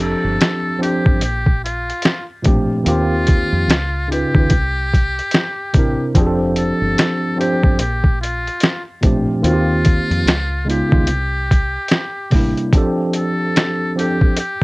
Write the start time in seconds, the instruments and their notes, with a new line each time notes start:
Already playing: fingered electric bass F1, tine electric piano F3 C4 D4 G4 A4
0.01 muted trumpet A4
0.24 fingered electric bass G1
0.41 snare, closed hi-hat
0.78 tine electric piano F3 C4 D4 G4, muted trumpet G4
0.83 tine electric piano C5, closed hi-hat
1.06 fingered electric bass G1, kick
1.21 fingered electric bass A#1, muted trumpet G4, closed hi-hat
1.46 kick
1.65 muted trumpet F4, closed hi-hat
1.90 closed hi-hat
2.02 snare, closed hi-hat
2.42 fingered electric bass A1, tine electric piano A#2 F3 A3 C4, kick, closed hi-hat
2.47 tine electric piano D4 G4
2.84 fingered electric bass D#2, tine electric piano D#3 A#3 C4 F4, closed hi-hat
2.88 muted trumpet F4, tine electric piano G4
3.27 kick, closed hi-hat
3.53 fingered electric bass F2
3.68 fingered electric bass C#2, snare, closed hi-hat
4.08 tine electric piano C#3 C#4 D#4 F4, muted trumpet G4
4.12 tine electric piano B4, closed hi-hat
4.35 fingered electric bass D#2, tine electric piano C#3 C#4 D#4, kick
4.39 tine electric piano F4 B4
4.50 fingered electric bass C2, kick, closed hi-hat
4.94 kick, closed hi-hat
5.19 closed hi-hat
5.31 snare, closed hi-hat
5.73 fingered electric bass A1, tine electric piano C3 C4 D4, kick, closed hi-hat
5.77 tine electric piano E4 A#4
6.15 fingered electric bass F1, tine electric piano F3 C4 D4 G4, kick, closed hi-hat
6.20 tine electric piano G#4
6.27 tine electric piano A4
6.56 muted trumpet A4, closed hi-hat
6.81 fingered electric bass G1
6.98 snare, closed hi-hat
7.36 tine electric piano F3 C4 D4 G4, muted trumpet G4
7.41 tine electric piano C5, closed hi-hat
7.63 fingered electric bass G1, kick
7.79 fingered electric bass A#1, muted trumpet G4, closed hi-hat
8.04 kick
8.21 muted trumpet F4, closed hi-hat
8.47 closed hi-hat
8.60 snare, closed hi-hat
9.01 fingered electric bass A1, tine electric piano A#2 F3 A3 C4 D4, kick, closed hi-hat
9.06 tine electric piano G4
9.42 fingered electric bass D#2, tine electric piano D#3 A#3 C4 F4, muted trumpet F4, closed hi-hat
9.47 tine electric piano F#4
9.53 tine electric piano G4
9.85 kick, closed hi-hat
10.10 fingered electric bass F2, closed hi-hat
10.26 fingered electric bass C#2, snare, closed hi-hat
10.65 tine electric piano C#3 G#3 B3 D#4
10.70 tine electric piano F4, muted trumpet G4, closed hi-hat
10.89 fingered electric bass D#2, tine electric piano C#3 G#3 B3, kick
10.93 tine electric piano D#4 F4
11.07 fingered electric bass C2, closed hi-hat
11.51 kick, closed hi-hat
11.88 snare, closed hi-hat
12.30 fingered electric bass A1, tine electric piano C3 G3 A#3 D4, kick, open hi-hat
12.36 tine electric piano E4
12.57 closed hi-hat
12.73 tine electric piano F3 C4 D4 G4, kick, closed hi-hat
12.78 tine electric piano A4
13.13 muted trumpet A4, closed hi-hat
13.56 snare, closed hi-hat
13.96 tine electric piano F3 C4 D4 G4, muted trumpet G4, closed hi-hat
14.00 tine electric piano A4
14.21 kick
14.37 muted trumpet G4, closed hi-hat